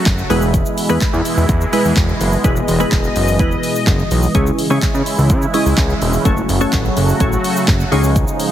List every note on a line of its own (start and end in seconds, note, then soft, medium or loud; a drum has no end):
0.00 0.27 C#3 medium
0.00 0.28 F#3 medium
0.00 0.27 A3 medium
0.00 0.28 A3 medium
0.00 0.27 C#4 medium
0.00 0.27 F#4 medium
0.00 0.28 F#4 medium
0.00 0.27 A4 medium
0.00 0.27 C#5 loud
0.06 0.23 F#1 medium
0.06 kick loud
0.06 clap loud
0.06 closed hi-hat medium
0.06 shaker medium
0.18 shaker soft
0.30 0.63 E1 loud
0.30 4.31 B2 medium
0.30 6.21 E3 medium
0.30 0.78 G#3 loud
0.30 4.31 G#3 medium
0.30 0.78 B3 medium
0.30 2.19 E4 medium
0.30 0.78 E4 medium
0.30 0.78 G#4 medium
0.30 0.78 B4 loud
0.30 open hi-hat medium
0.30 shaker soft
0.42 shaker medium
0.54 kick loud
0.54 closed hi-hat medium
0.54 shaker medium
0.66 shaker medium
0.78 open hi-hat medium
0.78 shaker medium
0.89 0.98 E2 loud
0.89 1.50 G#3 medium
0.89 1.50 B3 medium
0.89 1.50 E4 medium
0.89 1.50 G#4 medium
0.89 1.50 B4 loud
0.89 shaker medium
1.01 1.06 E2 medium
1.01 kick loud
1.01 clap loud
1.01 closed hi-hat medium
1.01 shaker medium
1.13 1.22 E2 loud
1.13 shaker medium
1.25 open hi-hat medium
1.25 shaker medium
1.37 1.45 E2 medium
1.37 shaker medium
1.49 1.65 E2 loud
1.49 kick loud
1.49 closed hi-hat medium
1.49 shaker medium
1.61 shaker medium
1.73 2.24 G#3 medium
1.73 2.24 B3 medium
1.73 2.24 E4 medium
1.73 2.25 G#4 medium
1.73 2.25 B4 medium
1.73 open hi-hat medium
1.73 shaker medium
1.85 1.93 E2 medium
1.85 shaker medium
1.97 2.13 E1 loud
1.97 kick loud
1.97 clap loud
1.97 closed hi-hat medium
1.97 shaker medium
2.09 shaker soft
2.20 2.37 F#1 loud
2.20 4.33 D#5 medium
2.20 open hi-hat medium
2.20 shaker medium
2.32 shaker medium
2.44 2.61 E1 loud
2.44 2.70 G#3 medium
2.44 2.70 B3 medium
2.44 2.70 E4 medium
2.44 2.70 G#4 medium
2.44 2.70 B4 medium
2.44 kick loud
2.44 closed hi-hat medium
2.44 shaker medium
2.56 shaker medium
2.68 2.85 E1 loud
2.68 open hi-hat medium
2.68 shaker medium
2.80 3.23 G#3 medium
2.80 3.23 B3 medium
2.80 3.23 E4 medium
2.80 3.23 G#4 medium
2.80 3.23 B4 loud
2.80 shaker medium
2.92 3.08 E1 loud
2.92 kick loud
2.92 clap loud
2.92 closed hi-hat medium
2.92 shaker medium
3.04 shaker medium
3.16 3.41 F#1 medium
3.16 open hi-hat medium
3.16 shaker medium
3.28 shaker medium
3.39 3.56 E1 medium
3.39 4.08 G#3 medium
3.39 4.08 B3 medium
3.39 4.08 E4 medium
3.39 4.08 G#4 medium
3.39 4.08 B4 loud
3.39 kick loud
3.39 closed hi-hat medium
3.39 shaker medium
3.52 shaker medium
3.63 open hi-hat medium
3.63 shaker medium
3.76 shaker medium
3.87 4.03 F#1 loud
3.87 kick loud
3.87 clap loud
3.87 closed hi-hat medium
3.87 shaker medium
3.99 shaker soft
4.11 4.27 B1 loud
4.11 open hi-hat medium
4.11 shaker medium
4.23 shaker medium
4.35 4.51 C#2 loud
4.35 8.52 C#3 medium
4.35 4.61 G#3 medium
4.35 6.23 G#3 medium
4.35 4.61 C#4 medium
4.35 6.23 E4 medium
4.35 4.61 E4 medium
4.35 4.61 G#4 medium
4.35 4.61 C#5 medium
4.35 kick loud
4.35 closed hi-hat medium
4.35 shaker medium
4.47 shaker medium
4.59 open hi-hat medium
4.59 shaker medium
4.70 4.79 C#3 loud
4.70 5.31 G#3 medium
4.70 5.31 C#4 medium
4.70 5.31 E4 medium
4.70 5.31 G#4 medium
4.70 5.31 C#5 loud
4.70 shaker medium
4.82 4.87 C#3 soft
4.82 kick loud
4.82 clap loud
4.82 closed hi-hat medium
4.82 shaker medium
4.94 5.03 C#3 medium
4.94 shaker medium
5.06 open hi-hat medium
5.06 shaker medium
5.18 5.31 C#2 medium
5.18 shaker medium
5.30 5.46 C#3 loud
5.30 kick loud
5.30 closed hi-hat medium
5.30 shaker medium
5.42 shaker medium
5.54 6.05 G#3 medium
5.54 6.05 C#4 medium
5.54 6.05 E4 medium
5.54 6.06 G#4 medium
5.54 6.06 D#5 loud
5.54 open hi-hat medium
5.54 shaker medium
5.66 5.74 C#2 medium
5.66 shaker medium
5.78 5.94 C#2 loud
5.78 kick loud
5.78 clap loud
5.78 closed hi-hat medium
5.78 shaker medium
5.89 shaker soft
6.02 6.18 E1 medium
6.02 open hi-hat medium
6.02 shaker medium
6.13 shaker medium
6.25 6.42 F#1 loud
6.25 7.90 F#3 medium
6.25 6.51 A3 medium
6.25 7.90 A3 medium
6.25 6.51 C#4 medium
6.25 7.90 F#4 medium
6.25 6.51 F#4 medium
6.25 6.51 A4 medium
6.25 6.51 C#5 loud
6.25 kick loud
6.25 closed hi-hat medium
6.25 shaker medium
6.37 shaker medium
6.49 6.66 F#1 loud
6.49 open hi-hat medium
6.49 shaker medium
6.61 7.04 A3 medium
6.61 7.04 C#4 medium
6.61 7.04 F#4 medium
6.61 7.04 A4 medium
6.61 7.04 C#5 loud
6.61 shaker medium
6.73 6.89 A1 loud
6.73 kick loud
6.73 clap loud
6.73 closed hi-hat medium
6.73 shaker medium
6.85 shaker medium
6.97 7.13 F#1 loud
6.97 open hi-hat medium
6.97 shaker medium
7.09 shaker medium
7.20 7.37 A1 loud
7.20 7.89 A3 medium
7.20 7.89 C#4 medium
7.20 7.89 F#4 medium
7.20 7.89 A4 medium
7.20 7.89 C#5 loud
7.20 kick loud
7.20 closed hi-hat medium
7.20 shaker medium
7.33 shaker medium
7.44 open hi-hat medium
7.44 shaker medium
7.57 shaker medium
7.68 7.84 F#1 medium
7.68 kick loud
7.68 clap loud
7.68 closed hi-hat medium
7.68 shaker medium
7.80 shaker soft
7.92 8.25 C#2 loud
7.92 8.52 F3 medium
7.92 8.52 G#3 medium
7.92 8.40 C#4 medium
7.92 8.40 D#4 medium
7.92 8.52 D#4 medium
7.92 8.40 F4 medium
7.92 8.40 G#4 medium
7.92 8.40 C#5 loud
7.92 open hi-hat medium
7.92 shaker medium
8.04 shaker medium
8.16 kick loud
8.16 closed hi-hat medium
8.16 shaker medium
8.28 shaker medium
8.40 open hi-hat medium
8.40 shaker medium